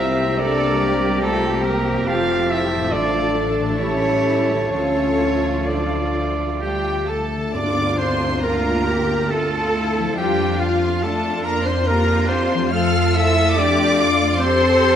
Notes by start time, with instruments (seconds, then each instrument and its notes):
Already playing: double bass section C2, harp C3 C4 G4 A#4, viola section C3 G3, violin section A#3 G4, cello section C4, bassoon C4, french horn section E4, clarinet G4, trumpet E5, oboe A#5
0.00 flute section C5, violin section E5
0.39 french horn section D4, cello section A4, flute section A#4, violin section D5, trumpet D5
0.80 cello section G4
1.20 french horn section A3, flute section F4, violin section A4, trumpet A4
1.62 french horn section A#3, flute section G4, violin section A#4, trumpet A#4
1.89 harp F2
1.93 harp C4
1.98 harp F4
2.02 french horn section F4, harp A4
2.07 double bass section F1, viola section F3, violin section A3 A4 F5, clarinet F4, flute section C5, trumpet F5, oboe A5
2.50 french horn section E4, flute section C5, trumpet E5, violin section E5
2.74 harp A2
2.79 harp A3
2.83 harp F4
2.88 french horn section D4, cello section F4, harp A4, trumpet D5
2.92 double bass section A1, viola section D3, bassoon A3, flute section A4, violin section D5
3.35 cello section D4
3.60 harp A2
3.65 harp A3
3.69 harp G4
3.74 french horn section C#4, clarinet G4, harp A4
3.78 viola section E3 G3, cello section E4, flute section A4, trumpet C#5, violin section C#5
4.52 harp D3
4.57 harp A3
4.61 harp F4
4.66 harp A4
4.71 double bass section D2, viola section F3, french horn section C#4, cello section F4, clarinet F4, flute section A4, violin section C#5, trumpet C#5
5.66 french horn section D4, flute section A4, violin section D5, trumpet D5
6.60 french horn section G3, violin section G4 G5, oboe G4, flute section G4, clarinet G4
7.08 french horn section A3, violin section A4 A5, oboe A4, flute section A4, clarinet A4
7.36 harp D3
7.40 harp A3
7.45 harp F4
7.49 harp D5
7.54 double bass section D2, french horn section D4, viola section D4 F4, violin section D5 D6, oboe D5, flute section D5, clarinet D5, tam-tam
7.98 french horn section C4, violin section C5 C6, oboe C5, clarinet C5, flute section C5
8.43 french horn section A#3, viola section D4 F4, cello section F4, violin section A#4 A#5, oboe A#4, clarinet A#4, flute section A#4
8.87 cello section G4, viola section G4
9.29 french horn section A3, viola section F4, violin section A4 A5, cello section A4, clarinet A4, flute section A4, oboe A4
9.74 viola section E4
9.99 harp F3
10.03 harp A3
10.08 harp F4
10.12 violin section G4, harp D5
10.17 double bass section F2, french horn section G3, viola section D4 F4, cello section F4, clarinet G4, oboe G4, flute section G4, violin section G5
10.60 french horn section F3, oboe F4, violin section F4 F5, clarinet F4, flute section F4
11.01 french horn section A3, viola section D4 F4, cello section D4, violin section A4 A5, oboe A4, clarinet A4, flute section A4
11.44 french horn section A#3, violin section A#4 A#5, clarinet A#4, oboe A#4, flute section A#4
11.65 french horn section C4, violin section C5 C6, clarinet C5, oboe C5, flute section C5
11.86 french horn section A#3, viola section D4 G4, cello section F4, violin section A#4 A#5, clarinet A#4, flute section A#4, oboe A#4
12.28 french horn section C4, violin section C5 C6, oboe C5, clarinet C5, flute section C5
12.54 harp F3
12.58 harp A3
12.63 harp F4
12.68 viola section A3 F4, harp C5, violin section F5 F6
12.72 french horn section F4, cello section A4, flute section F5, oboe F5, clarinet F5
13.15 french horn section E4, flute section E5, violin section E5 E6, clarinet E5, oboe E5
13.56 viola section A3 F4, french horn section D4, cello section G4, violin section D5 D6, flute section D5, oboe D5, clarinet D5
13.98 cello section F4
14.38 french horn section C4, viola section C4 G4, cello section A4, clarinet C5, flute section C5, oboe C5, violin section C5 C6